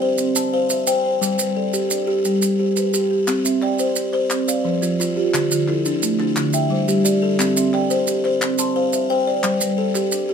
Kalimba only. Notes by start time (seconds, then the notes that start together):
0.02 C5
0.36 A5
0.54 C5
0.70 C5
0.87 C5 G5
1.22 G3
1.57 A4
1.73 G4
2.07 G4
2.59 G4
2.76 G4
2.94 G4
3.28 C4
3.62 D5
3.80 C5
4.13 C5
4.48 D5
4.65 F3
4.82 F4
5.00 F4
5.17 G4
5.34 D3
5.69 E4
5.86 D4
6.19 D4
6.54 E5
6.70 G3
6.88 G4
7.05 G4 D5
7.22 A4
7.39 C4
7.74 D5
7.90 C5
8.25 C5
8.59 A5
8.76 C5
8.93 C5
9.10 C5 G5
9.27 D5
9.44 G3
9.78 A4
9.95 G4
10.29 G4